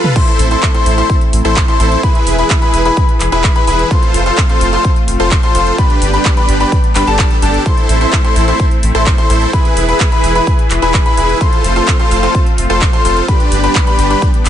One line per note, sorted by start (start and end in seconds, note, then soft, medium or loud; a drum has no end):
0.00 0.14 F4 medium
0.00 0.14 A4 medium
0.00 0.14 B4 medium
0.04 mid tom medium
0.16 2.01 A3 medium
0.16 2.01 C4 medium
0.16 0.48 E4 medium
0.16 3.87 E4 medium
0.16 0.48 A4 medium
0.16 0.48 C5 medium
0.16 0.48 C6 loud
0.16 kick loud
0.16 closed hi-hat medium
0.16 crash loud
0.28 closed hi-hat soft
0.39 0.56 A1 loud
0.39 open hi-hat loud
0.51 0.72 E4 medium
0.51 0.72 A4 medium
0.51 0.72 C5 medium
0.51 0.72 C6 medium
0.51 closed hi-hat soft
0.63 kick loud
0.63 clap loud
0.63 closed hi-hat medium
0.74 0.95 E4 medium
0.74 0.95 A4 medium
0.74 0.95 C5 medium
0.74 0.95 C6 loud
0.74 closed hi-hat soft
0.86 1.03 A1 medium
0.86 open hi-hat medium
0.98 1.15 E4 medium
0.98 1.15 A4 medium
0.98 1.15 C5 loud
0.98 1.15 C6 loud
0.98 closed hi-hat soft
1.10 kick loud
1.10 closed hi-hat medium
1.21 closed hi-hat soft
1.33 1.41 A1 medium
1.33 open hi-hat loud
1.45 1.61 A1 medium
1.45 1.65 E4 medium
1.45 1.65 A4 medium
1.45 1.65 C5 medium
1.45 1.65 C6 medium
1.45 closed hi-hat soft
1.56 kick loud
1.56 clap loud
1.56 closed hi-hat medium
1.68 1.77 E4 medium
1.68 1.77 A4 medium
1.68 1.77 C5 loud
1.68 1.77 C6 loud
1.68 closed hi-hat soft
1.80 1.96 A1 medium
1.80 2.01 E4 medium
1.80 2.01 A4 medium
1.80 2.01 C5 medium
1.80 2.01 C6 medium
1.80 open hi-hat loud
1.92 closed hi-hat soft
2.03 3.89 E3 medium
2.03 2.36 E4 medium
2.03 3.89 G#4 medium
2.03 2.36 G#4 medium
2.03 3.89 B4 medium
2.03 2.36 B4 medium
2.03 2.36 B5 medium
2.03 kick loud
2.03 closed hi-hat medium
2.15 closed hi-hat soft
2.27 2.43 E1 medium
2.27 open hi-hat loud
2.38 2.59 E4 medium
2.38 2.59 G#4 medium
2.38 2.59 B4 medium
2.38 2.59 B5 medium
2.38 closed hi-hat soft
2.50 kick loud
2.50 clap loud
2.50 closed hi-hat medium
2.62 2.83 E4 medium
2.62 2.83 G#4 medium
2.62 2.83 B4 medium
2.62 2.83 B5 loud
2.62 closed hi-hat soft
2.74 2.90 E1 loud
2.74 open hi-hat medium
2.85 3.03 E4 medium
2.85 3.03 G#4 medium
2.85 3.03 B4 loud
2.85 3.03 B5 loud
2.85 closed hi-hat soft
2.97 kick loud
2.97 closed hi-hat medium
3.09 closed hi-hat soft
3.20 3.29 E1 medium
3.20 clap medium
3.20 open hi-hat loud
3.32 3.49 E1 medium
3.32 3.53 E4 medium
3.32 3.53 G#4 medium
3.32 3.53 B4 medium
3.32 3.53 B5 medium
3.32 closed hi-hat soft
3.44 kick loud
3.44 clap loud
3.44 closed hi-hat medium
3.56 3.65 E4 loud
3.56 3.65 G#4 medium
3.56 3.65 B4 loud
3.56 3.65 B5 loud
3.56 closed hi-hat soft
3.67 3.84 E1 medium
3.67 3.88 E4 medium
3.67 3.88 G#4 medium
3.67 3.88 B4 loud
3.67 3.88 B5 loud
3.67 open hi-hat medium
3.79 closed hi-hat soft
3.91 5.76 A3 medium
3.91 5.76 C4 medium
3.91 5.76 F4 medium
3.91 4.23 C6 medium
3.91 kick loud
3.91 closed hi-hat medium
4.03 closed hi-hat soft
4.14 4.31 F1 loud
4.14 open hi-hat loud
4.26 4.47 F4 medium
4.26 4.47 A4 medium
4.26 4.47 C5 medium
4.26 4.47 C6 medium
4.26 closed hi-hat soft
4.38 kick loud
4.38 clap loud
4.38 closed hi-hat medium
4.49 4.70 F4 medium
4.49 4.70 A4 medium
4.49 4.70 C5 medium
4.49 4.70 C6 loud
4.49 closed hi-hat soft
4.61 4.78 F1 loud
4.61 open hi-hat medium
4.73 4.90 F4 medium
4.73 4.90 A4 medium
4.73 4.90 C5 loud
4.73 4.90 C6 loud
4.73 closed hi-hat soft
4.85 kick loud
4.85 closed hi-hat medium
4.96 closed hi-hat soft
5.08 5.16 F1 medium
5.08 open hi-hat loud
5.20 5.36 F1 medium
5.20 5.40 F4 medium
5.20 5.40 A4 medium
5.20 5.40 C5 medium
5.20 5.40 C6 medium
5.20 closed hi-hat soft
5.31 kick loud
5.31 clap loud
5.31 closed hi-hat medium
5.43 5.52 F4 loud
5.43 5.52 A4 medium
5.43 5.52 C5 loud
5.43 5.52 C6 loud
5.43 closed hi-hat soft
5.55 5.71 F1 medium
5.55 5.76 F4 medium
5.55 5.76 A4 medium
5.55 5.76 C5 medium
5.55 5.76 C6 medium
5.55 open hi-hat loud
5.67 closed hi-hat soft
5.78 7.64 G3 medium
5.78 7.64 B3 medium
5.78 7.64 D4 medium
5.78 6.11 D4 medium
5.78 6.11 G4 medium
5.78 6.11 B4 medium
5.78 6.11 B5 medium
5.78 kick loud
5.78 closed hi-hat medium
5.90 closed hi-hat soft
6.02 6.18 G1 loud
6.02 open hi-hat loud
6.13 6.34 D4 medium
6.13 6.34 G4 medium
6.13 6.34 B4 medium
6.13 6.34 B5 medium
6.13 closed hi-hat soft
6.25 kick loud
6.25 clap loud
6.25 closed hi-hat medium
6.37 6.58 D4 medium
6.37 6.58 G4 medium
6.37 6.58 B4 medium
6.37 6.58 B5 loud
6.37 closed hi-hat soft
6.49 6.65 G1 loud
6.49 open hi-hat medium
6.60 6.78 D4 medium
6.60 6.78 G4 medium
6.60 6.78 B4 medium
6.60 6.78 B5 loud
6.60 closed hi-hat soft
6.72 kick loud
6.72 closed hi-hat medium
6.84 closed hi-hat soft
6.95 7.04 G1 medium
6.95 7.04 D4 medium
6.95 7.04 G4 medium
6.95 7.04 B4 medium
6.95 7.05 B5 loud
6.95 clap medium
6.95 open hi-hat loud
7.07 7.24 G1 medium
7.07 7.35 D4 loud
7.07 7.35 G4 medium
7.07 7.35 A4 loud
7.07 7.35 A5 loud
7.07 closed hi-hat soft
7.19 kick loud
7.19 clap loud
7.19 closed hi-hat medium
7.31 closed hi-hat soft
7.42 7.59 G1 medium
7.42 7.63 D4 loud
7.42 7.63 G4 medium
7.42 7.63 A4 loud
7.42 7.63 A5 loud
7.42 open hi-hat medium
7.54 closed hi-hat soft
7.66 9.52 A3 medium
7.66 9.52 C4 medium
7.66 7.98 E4 medium
7.66 9.52 E4 medium
7.66 7.98 A4 medium
7.66 7.98 C5 medium
7.66 7.98 C6 loud
7.66 kick loud
7.66 closed hi-hat medium
7.78 closed hi-hat soft
7.89 8.06 A1 loud
7.89 open hi-hat loud
8.01 8.22 E4 medium
8.01 8.22 A4 medium
8.01 8.22 C5 medium
8.01 8.22 C6 medium
8.01 closed hi-hat soft
8.13 kick loud
8.13 clap loud
8.13 closed hi-hat medium
8.24 8.45 E4 medium
8.24 8.45 A4 medium
8.24 8.45 C5 medium
8.24 8.45 C6 medium
8.24 closed hi-hat soft
8.36 8.53 A1 loud
8.36 open hi-hat medium
8.48 8.65 E4 medium
8.48 8.65 A4 medium
8.48 8.65 C5 loud
8.48 8.65 C6 loud
8.48 closed hi-hat soft
8.60 kick loud
8.60 closed hi-hat medium
8.71 closed hi-hat soft
8.83 8.91 A1 medium
8.83 open hi-hat loud
8.95 9.11 A1 medium
8.95 9.15 E4 medium
8.95 9.15 A4 medium
8.95 9.15 C5 medium
8.95 9.15 C6 medium
8.95 closed hi-hat soft
9.06 kick loud
9.06 clap loud
9.06 closed hi-hat medium
9.18 9.27 E4 loud
9.18 9.27 A4 medium
9.18 9.27 C5 loud
9.18 9.27 C6 loud
9.18 closed hi-hat soft
9.30 9.46 A1 medium
9.30 9.51 E4 medium
9.30 9.51 A4 medium
9.30 9.51 C5 loud
9.30 9.51 C6 medium
9.30 open hi-hat medium
9.42 closed hi-hat soft
9.53 11.39 E3 medium
9.53 9.86 E4 medium
9.53 11.39 E4 medium
9.53 11.39 G#4 medium
9.53 9.86 G#4 medium
9.53 11.39 B4 medium
9.53 9.86 B5 medium
9.53 kick loud
9.53 closed hi-hat medium
9.65 closed hi-hat soft
9.77 9.93 E1 loud
9.77 open hi-hat loud
9.88 10.09 E4 medium
9.88 10.09 G#4 medium
9.88 10.09 B4 medium
9.88 10.09 B5 medium
9.88 closed hi-hat soft
10.00 kick loud
10.00 clap loud
10.00 closed hi-hat medium
10.12 10.33 E4 medium
10.12 10.33 G#4 medium
10.12 10.33 B4 medium
10.12 10.33 B5 medium
10.12 closed hi-hat soft
10.24 10.40 E1 loud
10.24 open hi-hat medium
10.35 10.53 E4 medium
10.35 10.53 G#4 medium
10.35 10.53 B4 loud
10.35 10.53 B5 medium
10.35 closed hi-hat soft
10.47 kick loud
10.47 closed hi-hat medium
10.59 closed hi-hat soft
10.70 10.79 E1 medium
10.70 clap medium
10.70 open hi-hat loud
10.82 10.99 E1 medium
10.82 11.03 E4 medium
10.82 11.03 G#4 medium
10.82 11.03 B4 medium
10.82 11.03 B5 medium
10.82 closed hi-hat soft
10.94 kick loud
10.94 clap loud
10.94 closed hi-hat medium
11.06 11.15 E4 loud
11.06 11.15 G#4 medium
11.06 11.15 B4 loud
11.06 11.15 B5 loud
11.06 closed hi-hat soft
11.17 11.34 E1 medium
11.17 11.38 E4 medium
11.17 11.38 G#4 medium
11.17 11.38 B4 loud
11.17 11.38 B5 medium
11.17 open hi-hat medium
11.29 closed hi-hat soft
11.41 13.27 A3 medium
11.41 13.26 C4 medium
11.41 11.73 F4 medium
11.41 13.27 F4 medium
11.41 11.73 A4 medium
11.41 11.73 C5 loud
11.41 11.73 C6 medium
11.41 kick loud
11.41 closed hi-hat medium
11.53 closed hi-hat soft
11.64 11.81 F1 loud
11.64 open hi-hat loud
11.76 11.97 F4 medium
11.76 11.97 A4 medium
11.76 11.97 C5 medium
11.76 11.97 C6 medium
11.76 closed hi-hat soft
11.88 kick loud
11.88 clap loud
11.88 closed hi-hat medium
11.99 12.20 F4 medium
11.99 12.20 A4 medium
11.99 12.20 C5 medium
11.99 12.20 C6 loud
11.99 closed hi-hat soft
12.11 12.28 F1 loud
12.11 open hi-hat medium
12.23 12.40 F4 medium
12.23 12.40 A4 medium
12.23 12.40 C5 medium
12.23 12.40 C6 medium
12.23 closed hi-hat soft
12.35 kick loud
12.35 closed hi-hat medium
12.46 closed hi-hat soft
12.58 12.66 F1 medium
12.58 open hi-hat loud
12.70 12.86 F1 medium
12.70 12.90 F4 medium
12.70 12.90 A4 medium
12.70 12.90 C5 medium
12.70 12.90 C6 medium
12.70 closed hi-hat soft
12.82 kick loud
12.82 clap loud
12.82 closed hi-hat medium
12.93 13.02 F4 loud
12.93 13.02 A4 medium
12.93 13.02 C5 loud
12.93 13.02 C6 loud
12.93 closed hi-hat soft
13.05 13.21 F1 medium
13.05 13.26 F4 medium
13.05 13.26 A4 medium
13.05 13.26 C5 loud
13.05 13.26 C6 medium
13.05 open hi-hat medium
13.17 closed hi-hat soft
13.28 14.49 G3 medium
13.28 14.49 B3 medium
13.28 14.49 D4 medium
13.28 13.61 D4 medium
13.28 13.61 G4 medium
13.28 13.61 B4 medium
13.28 13.61 B5 loud
13.28 kick loud
13.28 closed hi-hat medium
13.40 closed hi-hat soft
13.52 13.68 G1 loud
13.52 open hi-hat loud
13.64 13.84 D4 medium
13.64 13.84 G4 medium
13.64 13.84 B4 medium
13.64 13.84 B5 medium
13.64 closed hi-hat soft
13.75 kick loud
13.75 clap loud
13.75 closed hi-hat medium
13.87 14.08 D4 medium
13.87 14.08 G4 medium
13.87 14.08 B4 medium
13.87 14.08 B5 loud
13.87 closed hi-hat soft
13.99 14.15 G1 medium
13.99 open hi-hat medium
14.10 14.28 D4 medium
14.10 14.28 G4 medium
14.10 14.28 B4 loud
14.10 14.28 B5 medium
14.10 closed hi-hat soft
14.22 kick loud
14.22 closed hi-hat medium
14.34 closed hi-hat soft
14.45 14.49 G1 medium
14.45 clap medium
14.45 open hi-hat loud